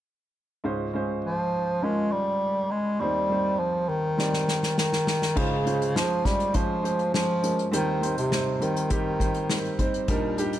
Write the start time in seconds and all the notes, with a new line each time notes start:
0.64 C#2 G#2 G#3 C#4 F4 C5
0.94 G#3 C#4 F4 C5
1.25 F3
1.82 F3 G#3 C#4 F4 A#4
2.12 G3
2.71 G#3
3.00 D#2 D#3 G3 C4 D#4 C5
3.30 G3 C4 D#4 C5
3.59 F3
3.89 D#3
4.17 G3 C4 D#4 D5, snare
4.33 snare
4.48 snare
4.63 snare
4.78 D#3, snare
4.93 snare
5.07 snare
5.22 snare
5.35 C#2 G#2 C#3 G#3 C#4 F4 C5, kick, crash
5.65 G#3 C#4 F4 C5, closed hi-hat
5.82 closed hi-hat
5.94 F3 G#3 C#4 F4 C5, snare
6.24 G3 G#3 C#4 F4 G4, kick, snare, closed hi-hat
6.40 closed hi-hat
6.54 F3 G#3 C#4 F4 C5, kick, closed hi-hat
6.83 G#3 C#4 F4 C5, closed hi-hat
6.99 closed hi-hat
7.13 F3 G#3 C#4 F4 C5, snare
7.42 G#3 C#4 F4 A#4, closed hi-hat
7.59 closed hi-hat
7.72 D#2 D#3 G3 C4 D#4 C5, closed hi-hat
8.01 G3 C4 D#4 C5, closed hi-hat
8.18 C3, closed hi-hat
8.30 G3 C4 D#4 C5, snare
8.60 D#3 G3 C4 D#4 A#4, closed hi-hat
8.76 closed hi-hat
8.90 D#3 G3 C4 D#4 G4, kick, closed hi-hat
9.20 G3 C4 D#4 C5, kick, closed hi-hat
9.34 closed hi-hat
9.49 G3 C4 D#4 A#4, snare
9.65 closed hi-hat
9.79 G3 C4 D#4 C5, kick, closed hi-hat
9.94 closed hi-hat
10.08 D#2 A#2 G3 D4 D#4 A#4, kick, closed hi-hat
10.37 G3 D4 D#4 G4, closed hi-hat
10.53 closed hi-hat